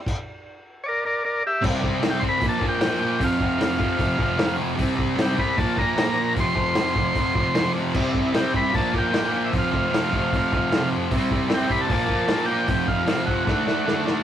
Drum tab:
CC |x-------|x-------|--------|--------|
HH |--------|--o-o-o-|o-o-o-o-|o-o-o-o-|
SD |--------|--o---o-|--o---o-|--o---o-|
BD |o-------|oo-ooo--|oo-ooo--|oo-ooo--|

CC |--------|x-------|--------|--------|
HH |o-o-o-o-|--o-o-o-|o-o-o-o-|o-o-o-o-|
SD |--o---o-|--o---o-|--o---o-|--o---o-|
BD |oo-ooo--|oo-ooo--|oo-ooo--|oo-ooo--|

CC |--------|
HH |o-o-----|
SD |--o-oooo|
BD |oo-oo---|